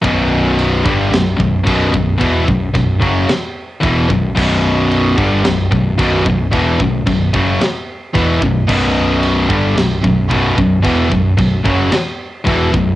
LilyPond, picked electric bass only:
\new Staff \with { instrumentName = "Picked electric bass" } { \clef bass \time 4/4 \key b \minor \tempo 4 = 111 b,,,4. g,,8 b,,,8 b,,,8 b,,,8 b,,,8 | e,,8 b,,,8 b,,,8 fis,,8 r4 e,,8 b,,,8 | b,,,4. g,,8 b,,,8 b,,,8 b,,,8 b,,,8 | e,,8 b,,,8 b,,,8 fis,,8 r4 e,,8 b,,,8 |
b,,,4. g,,8 b,,,8 b,,,8 b,,,8 b,,,8 | e,,8 b,,,8 b,,,8 fis,,8 r4 e,,8 b,,,8 | }